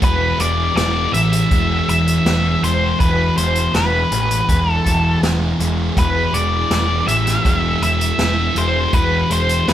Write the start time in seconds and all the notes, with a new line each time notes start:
Already playing: G#3 B3
0.02 E1 E3 B4, kick, closed hi-hat
0.39 E1 G#3 D5, closed hi-hat
0.75 E1 B3 D5, snare, closed hi-hat
1.13 A1 E3 E5, closed hi-hat
1.33 closed hi-hat
1.51 E1 G#3, kick, closed hi-hat
1.88 E1 E3 E5, closed hi-hat
2.07 closed hi-hat
2.25 E1 B3, snare, closed hi-hat
2.62 E1 G#3 C5, closed hi-hat
3.00 E1 E3 B4, kick, closed hi-hat
3.37 E1 G#3 C5, closed hi-hat
3.55 closed hi-hat
3.74 E1 B3 B4, snare, closed hi-hat
4.12 A1 E3, closed hi-hat
4.31 closed hi-hat
4.48 E1 G#3, kick, closed hi-hat
4.72 A4
4.86 E1 E3, kick, closed hi-hat
5.22 E1 B3, snare, closed hi-hat
5.59 E1 G#3, closed hi-hat
5.97 E1 E3 B4, kick, closed hi-hat
6.33 E1 G#3 D5, closed hi-hat
6.70 E1 B3, snare, closed hi-hat
7.07 A1 E3 E5, closed hi-hat
7.27 snare, closed hi-hat
7.45 E1 G#3, kick, closed hi-hat
7.80 E1 E3 E5, closed hi-hat
8.01 closed hi-hat
8.18 E1 B3, snare, closed hi-hat
8.55 E1 G#3 C5, closed hi-hat
8.93 E1 E3 B4, kick, closed hi-hat
9.30 E1 G#3 C5, closed hi-hat
9.49 closed hi-hat
9.67 E1 B3 B4, snare, closed hi-hat